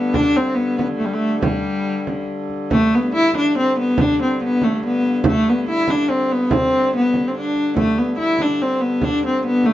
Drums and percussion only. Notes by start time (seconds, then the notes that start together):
0.14 frame drum
0.57 frame drum
0.79 frame drum
1.01 frame drum
1.42 frame drum
2.07 frame drum
2.49 frame drum
2.71 frame drum
2.92 frame drum
3.13 frame drum
3.34 frame drum
3.56 frame drum
3.98 frame drum
4.20 frame drum
4.41 frame drum
4.62 frame drum
4.82 frame drum
5.24 frame drum
5.46 frame drum
5.67 frame drum
5.88 frame drum
6.09 frame drum
6.51 frame drum
6.93 frame drum
7.14 frame drum
7.55 frame drum
7.77 frame drum
7.97 frame drum
8.18 frame drum
8.39 frame drum
8.60 frame drum
9.01 frame drum
9.22 frame drum
9.43 frame drum
9.63 frame drum